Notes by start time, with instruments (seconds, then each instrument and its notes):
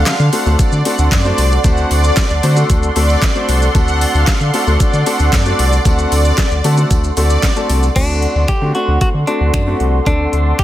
Already playing: grand piano A3 C4 D4 F#4 A4, analog synth pad A4 D5 F#5 C6, supersaw synth F5
0.06 analog synth bass D3, snare, clap, closed hi-hat, tambourine, shaker
0.20 analog synth bass D3, shaker
0.32 grand piano A3 C4 D4 F#4 A4, supersaw synth F#5, open hi-hat, tambourine, shaker
0.46 analog synth bass D2, grand piano A3 C4 D4 F#4 A4, tambourine, shaker
0.59 analog synth bass D3, supersaw synth D5, kick, closed hi-hat, tambourine, shaker
0.72 analog synth bass D3, tambourine, shaker
0.85 grand piano A3 C4 D4 F#4 A4, supersaw synth F#5, open hi-hat, tambourine, shaker
0.98 analog synth bass D2, shaker
1.12 analog synth bass F#2, supersaw synth D5, kick, snare, clap, closed hi-hat, tambourine, shaker
1.25 grand piano A3 C4 D4 F#4 C5, shaker
1.38 analog synth bass C2, open hi-hat, tambourine, shaker
1.51 shaker
1.64 analog synth bass D2, grand piano A3 C4 D4 F#4 C5, supersaw synth F#5, kick, closed hi-hat, tambourine, shaker
1.77 shaker
1.90 analog synth bass D2, supersaw synth D5, open hi-hat, tambourine, shaker
2.04 shaker
2.17 kick, snare, clap, closed hi-hat, tambourine, shaker
2.30 analog synth bass D2, shaker
2.43 analog synth bass D3, grand piano A3 C4 D4 F#4 C5, supersaw synth F#5, open hi-hat, tambourine, shaker
2.56 grand piano A3 C4 D4 F#4 A4, tambourine, shaker
2.70 analog synth bass D2, kick, closed hi-hat, tambourine, shaker
2.83 shaker
2.96 analog synth bass D2, grand piano A3 C4 D4 F#4 A4, supersaw synth D5, open hi-hat, tambourine, shaker
3.09 tambourine, shaker
3.22 kick, snare, clap, closed hi-hat, tambourine, shaker
3.35 grand piano A3 C4 D4 F#4 C5, shaker
3.49 analog synth bass C2, open hi-hat, tambourine, shaker
3.62 tambourine, shaker
3.75 analog synth bass D2, grand piano A3 C4 D4 F#4 A4, supersaw synth F#5, kick, closed hi-hat, tambourine, shaker
3.88 shaker
4.01 open hi-hat, tambourine, shaker
4.14 analog synth bass D2, supersaw synth F5, shaker
4.27 analog synth bass D3, kick, snare, clap, closed hi-hat, tambourine, shaker
4.41 analog synth bass D3, shaker
4.54 grand piano A3 C4 D4 F#4 A4, supersaw synth F#5, open hi-hat, tambourine, shaker
4.67 analog synth bass D2, grand piano A3 C4 D4 F#4 A4, tambourine, shaker
4.80 analog synth bass D3, supersaw synth D5, kick, closed hi-hat, tambourine, shaker
4.93 analog synth bass D3, tambourine, shaker
5.06 grand piano A3 C4 D4 F#4 A4, supersaw synth F#5, open hi-hat, tambourine, shaker
5.19 analog synth bass D2, tambourine, shaker
5.33 analog synth bass F#2, supersaw synth D5, kick, snare, clap, closed hi-hat, tambourine, shaker
5.46 grand piano A3 C4 D4 F#4 A4, shaker
5.59 analog synth bass C2, open hi-hat, tambourine, shaker
5.72 tambourine, shaker
5.85 analog synth bass D2, grand piano A3 C4 D4 F#4 A4, supersaw synth F#5, kick, closed hi-hat, tambourine, shaker
5.98 shaker
6.12 analog synth bass D2, supersaw synth D5, open hi-hat, tambourine, shaker
6.25 shaker
6.38 kick, snare, clap, closed hi-hat, tambourine, shaker
6.51 analog synth bass D2, shaker
6.64 analog synth bass D3, grand piano A3 C4 D4 F#4 A4, supersaw synth F#5, open hi-hat, tambourine, shaker
6.77 grand piano A3 C4 D4 F#4 A4, shaker
6.90 analog synth bass D2, kick, closed hi-hat, tambourine, shaker
7.04 tambourine, shaker
7.17 analog synth bass D2, grand piano A3 C4 D4 F#4 A4, supersaw synth D5, open hi-hat, tambourine, shaker
7.30 tambourine, shaker
7.43 kick, snare, clap, closed hi-hat, tambourine, shaker
7.56 grand piano A3 C4 D4 F#4 A4, shaker
7.69 analog synth bass C2, open hi-hat, tambourine, shaker
7.83 tambourine, shaker
7.96 analog synth bass D2, grand piano A3 C4 D4 F#4, clean electric guitar D4, analog synth pad A4 D5 F#5 C6, kick, closed hi-hat, crash
8.22 closed hi-hat
8.35 analog synth bass D2
8.48 analog synth bass D3, clean electric guitar G4, finger snap, kick, closed hi-hat
8.61 analog synth bass D3, grand piano A3 C4 D4 F#4
8.75 grand piano A3 C4 D4 F#4, clean electric guitar F#4, closed hi-hat
8.88 analog synth bass D2
9.01 analog synth bass D3, clean electric guitar F#4, kick, closed hi-hat
9.14 analog synth bass D3
9.27 grand piano A3 C4 D4 F#4, clean electric guitar D4, closed hi-hat
9.40 analog synth bass D2
9.54 analog synth bass F#2, finger snap, kick, closed hi-hat
9.67 grand piano A3 C4 D4 F#4
9.80 analog synth bass C2, closed hi-hat
10.06 analog synth bass D2, grand piano A3 C4 D4 A4, clean electric guitar D4, kick, closed hi-hat
10.33 analog synth bass D2, closed hi-hat
10.59 clean electric guitar G4, finger snap, kick, closed hi-hat